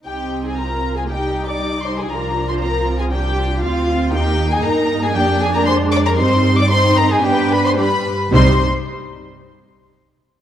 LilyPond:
<<
  \new Staff \with { instrumentName = "Violin section" } { \time 4/4 \key c \minor \tempo 4 = 116 g''8. aes''16 bes''8. aes''16 g''8. d'''8. c'''16 aes''16 | bes''8. c'''16 bes''8. aes''16 g''4 f''4 | g''8. aes''16 bes''8. aes''16 g''8 aes''16 bes''16 c'''8 d'''16 bes''16 | c'''8. d'''16 c'''8 bes''16 aes''16 g''8 b''16 c'''16 b''4 |
c'''8 r2. r8 | }
  \new Staff \with { instrumentName = "Violin section" } { \time 4/4 \key c \minor g'8. aes'16 bes'8. aes'16 g'8. d''8. c''16 aes'16 | bes'8. c''16 bes'8. aes'16 g'4 f'4 | g'8. aes'16 bes'8. aes'16 g'8 aes'16 bes'16 c''8 d''16 bes'16 | c''8. d''16 c''8 bes'16 aes'16 g'8 b'16 c''16 b'4 |
c''8 r2. r8 | }
  \new Staff \with { instrumentName = "Cello section" } { \time 4/4 \key c \minor r2 ees'2 | f'2 g'8 f'4. | ees'2 d'2 | c'4 ees'4 b'4 g'8 r8 |
c8 r2. r8 | }
  \new Staff \with { instrumentName = "Viola section" } { \time 4/4 \key c \minor << { ees'4 f'4 ees'2 | d'4 c'4 d'4 f'8 f'8 | ees'4 ees'4 d'2 | ees'4 ees'4 d'4 d'8 r8 |
ees'8 r2. r8 | } \\ { c'2 g4 g4 | f2. c'4 | bes4 bes2 aes4 | g4 c'4 b4 g8 r8 |
g8 r2. r8 | } >> }
  \new Staff \with { instrumentName = "Double bass section" } { \clef bass \time 4/4 \key c \minor c,1 | c,2. d,4 | ees,4 g,4 f,2 | g,2 g,4. r8 |
c,8 r2. r8 | }
>>